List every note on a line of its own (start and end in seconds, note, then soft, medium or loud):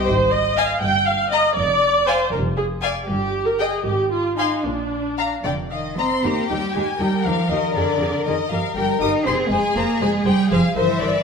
0.08 0.67 G#1 medium
0.08 0.67 G#2 medium
0.08 0.33 C5 medium
0.32 0.57 D#5 medium
0.57 0.69 D#5 medium
0.57 0.82 F5 medium
0.57 0.69 G#5 medium
0.82 1.42 G1 medium
0.82 1.42 G2 medium
0.82 1.07 G5 medium
1.07 1.32 F5 medium
1.32 1.57 D#5 medium
1.32 1.44 D#5 medium
1.32 1.44 A#5 medium
1.56 2.18 F1 medium
1.56 2.17 F2 medium
1.56 2.06 D5 medium
2.07 2.32 C5 medium
2.07 2.19 D5 medium
2.07 2.19 F5 medium
2.07 2.19 G#5 medium
2.32 2.93 F1 medium
2.32 2.93 F2 medium
2.32 2.40 A#4 medium
2.57 2.65 G#4 medium
2.82 2.94 D5 medium
2.82 2.95 F5 medium
2.82 2.94 G#5 medium
3.08 3.70 G1 medium
3.08 3.70 G2 medium
3.08 3.44 G4 medium
3.47 3.60 A#4 medium
3.59 3.86 G#4 medium
3.59 3.72 D#5 soft
3.59 3.71 G5 medium
3.85 4.49 G#1 medium
3.85 4.49 G#2 medium
3.85 4.12 G4 medium
4.12 4.38 F4 medium
4.38 4.65 D#4 medium
4.38 4.51 F5 soft
4.38 4.51 G#5 soft
4.38 4.51 C6 soft
4.65 5.29 A#1 medium
4.65 5.29 A#2 medium
4.65 5.45 D4 medium
5.18 5.31 F5 soft
5.18 5.30 A#5 soft
5.44 6.08 F1 medium
5.44 6.08 F2 soft
5.44 5.52 D3 medium
5.44 5.52 D5 medium
5.44 5.53 G5 medium
5.71 5.97 D#3 soft
5.71 5.97 D#5 soft
5.71 5.80 F5 soft
5.98 6.24 C4 medium
5.98 6.06 D#5 soft
5.98 6.10 A#5 soft
5.98 6.23 C6 medium
6.24 6.32 D#2 medium
6.24 6.50 A#3 medium
6.24 6.32 D#4 soft
6.24 6.96 G4 medium
6.24 6.32 G4 soft
6.24 6.50 A#5 medium
6.49 6.58 D#2 soft
6.49 6.74 G3 medium
6.49 6.58 D#4 soft
6.49 6.58 G4 soft
6.49 6.74 G5 medium
6.75 6.83 D#2 medium
6.75 6.83 G#3 medium
6.75 6.84 D#4 soft
6.75 6.84 G4 soft
6.75 7.00 G#5 medium
7.00 7.08 D#2 soft
7.00 7.25 G3 medium
7.00 7.09 D#4 soft
7.00 7.09 G4 soft
7.00 8.48 A#4 medium
7.00 7.25 G5 medium
7.25 7.33 D#2 soft
7.25 7.50 F3 medium
7.25 7.34 D#4 soft
7.25 7.34 G4 soft
7.25 7.50 F5 medium
7.50 7.58 D#2 medium
7.50 7.75 D#3 medium
7.50 7.59 D#4 soft
7.50 7.59 G4 soft
7.50 7.76 D#5 medium
7.75 7.84 F2 medium
7.75 8.26 D3 medium
7.75 7.84 G#4 medium
7.75 7.84 A#4 medium
7.75 8.25 D5 medium
8.00 8.08 F2 soft
8.00 8.09 G#4 soft
8.00 8.10 A#4 soft
8.25 8.34 F2 medium
8.25 8.33 D#3 medium
8.25 8.35 G#4 soft
8.25 8.35 A#4 soft
8.25 8.50 D#5 medium
8.50 8.59 G1 soft
8.50 8.58 F3 medium
8.50 8.60 G4 soft
8.50 9.25 A#4 medium
8.50 8.59 A#4 soft
8.50 8.76 F5 medium
8.75 8.84 G1 soft
8.75 9.00 G3 medium
8.75 8.85 G4 soft
8.75 8.85 A#4 soft
8.75 9.01 G5 medium
9.00 9.09 G1 soft
9.00 9.25 D#4 medium
9.00 9.10 G4 soft
9.00 9.10 A#4 soft
9.00 9.09 D#6 medium
9.26 9.35 F1 medium
9.26 9.51 C4 medium
9.26 10.73 G#4 medium
9.26 9.34 G#4 medium
9.26 9.34 C5 medium
9.26 9.34 C6 medium
9.51 9.59 F1 soft
9.51 9.76 G#3 medium
9.51 9.60 G#4 soft
9.51 9.60 C5 soft
9.51 9.76 G#5 medium
9.75 9.84 F1 medium
9.75 10.01 A#3 medium
9.75 9.84 G#4 soft
9.75 9.84 C5 soft
9.75 10.01 A#5 medium
10.00 10.09 F1 medium
10.00 10.26 G#3 medium
10.00 10.09 G#4 soft
10.00 10.08 C5 soft
10.00 10.09 G#5 medium
10.25 10.35 F1 medium
10.25 10.51 G3 medium
10.25 10.33 G#4 soft
10.25 10.34 C5 soft
10.25 10.51 G5 medium
10.50 10.60 F1 medium
10.50 10.58 F3 medium
10.50 10.59 G#4 medium
10.50 10.59 C5 medium
10.50 10.76 F5 medium
10.76 10.84 G1 medium
10.76 11.23 E3 medium
10.76 10.84 A#4 medium
10.76 10.84 C5 medium
10.76 11.01 C5 medium
10.76 11.23 E5 medium
11.01 11.10 G1 medium
11.01 11.09 A#4 medium
11.01 11.09 C5 medium
11.01 11.23 D5 medium